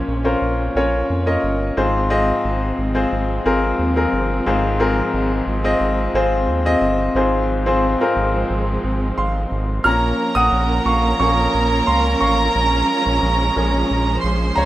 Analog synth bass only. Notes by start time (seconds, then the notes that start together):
0.08 A#1
0.42 A#1
0.75 A#1
1.10 F2
1.43 G1
1.77 G#1
2.45 G#1
2.78 G#1
3.12 G#1
3.45 G#1
3.79 D#2
4.13 G1
4.47 G#1
5.14 G#1
5.47 G#1
5.80 G#1
6.14 G#1
6.47 D#2
6.81 G1
7.15 G#1
8.16 G#1
8.50 G#1
8.84 G#1
9.18 G#1
9.51 G#1
9.85 A#1
10.36 A#1
10.52 A#1
10.86 A#1
11.20 A#1
11.54 A#1
11.88 C#2
12.21 A1
12.55 A#1
13.06 A#1
13.22 A#1
13.56 A#1
13.91 A#1
14.24 A#1
14.57 C#2